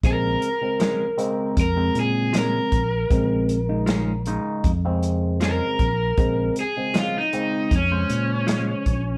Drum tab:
HH |xxxxxxxx|xxxxxxxx|xxxxxxxx|
SD |--o---o-|--o---o-|--o---o-|
BD |o---o--o|o---o--o|o---o--o|